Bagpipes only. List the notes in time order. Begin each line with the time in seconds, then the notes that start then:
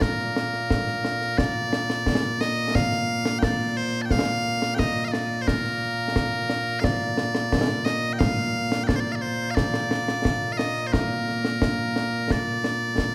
Already playing: A#2 A#3
0.02 A#4
1.38 D5
2.41 D#5
2.75 F5
3.39 G5
3.43 D5
3.77 C5
4.02 G5 A5
4.11 F5
4.74 G5
4.79 D#5
5.05 D#5 F5
5.12 D5
5.42 C5
5.48 A#4
6.80 F5
6.84 D5
7.85 D#5
8.13 G5
8.19 F5
8.84 D5 G5
8.96 C5
9.00 D5
9.12 D5 F5
9.22 C5
9.51 F5
9.55 D5
10.52 F5
10.57 D#5
10.87 C5
10.93 A#4
12.32 D5